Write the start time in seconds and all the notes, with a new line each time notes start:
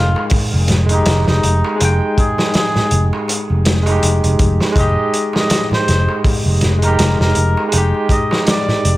Already playing: F1 G#3 D#4 F4 A#4 G5
0.16 darbuka tek
0.30 kick, open hi-hat, darbuka tek, darbuka dum
0.53 F1, darbuka tek
0.68 snare, closed hi-hat, darbuka dum
0.86 G#3, closed hi-hat, darbuka tek
0.91 D#4
0.95 G4
1.06 F1, snare, closed hi-hat, darbuka tek
1.27 F1 D#4, snare, darbuka tek
1.43 F1, closed hi-hat
1.64 darbuka tek
1.76 G#3 D#4, darbuka tek
1.81 F1, closed hi-hat
1.85 G5
2.02 darbuka tek
2.18 G#4, kick, closed hi-hat
2.38 snare, darbuka tek
2.54 G#4, snare, closed hi-hat, darbuka tek
2.75 snare, darbuka tek, darbuka dum
2.91 F1, closed hi-hat
3.13 darbuka tek
3.28 closed hi-hat, darbuka tek
3.50 F1, darbuka tek
3.65 snare, closed hi-hat
3.83 G#3, closed hi-hat, darbuka tek
3.87 D#4
3.92 G4
4.02 F1, closed hi-hat, darbuka tek
4.23 F1, closed hi-hat, darbuka tek
4.39 F1, kick, closed hi-hat
4.60 snare, darbuka tek
4.72 G#3, kick, darbuka tek
4.76 F1 D#4 D#5, closed hi-hat
4.81 G4
4.97 darbuka tek
5.14 closed hi-hat
5.33 D#5, snare, darbuka tek
5.50 snare, closed hi-hat, darbuka tek
5.71 C5, snare, darbuka tek, darbuka dum
5.88 F1, snare, closed hi-hat
6.08 darbuka tek
6.24 kick, open hi-hat, darbuka tek, darbuka dum
6.46 F1, darbuka tek
6.61 snare, closed hi-hat, darbuka dum
6.79 G#3, closed hi-hat
6.83 D#4 A#4, darbuka tek
6.87 G4
6.99 F1, snare, closed hi-hat, darbuka tek
7.20 F1 A#4, snare, darbuka tek
7.35 F1, closed hi-hat
7.57 darbuka tek
7.69 G#3, closed hi-hat
7.73 F1 D#4, darbuka tek
7.78 G4
7.95 darbuka tek
8.09 D#5, kick, closed hi-hat
8.31 snare, darbuka tek
8.47 D5, snare, closed hi-hat, darbuka tek
8.68 snare, darbuka tek, darbuka dum
8.85 F1, closed hi-hat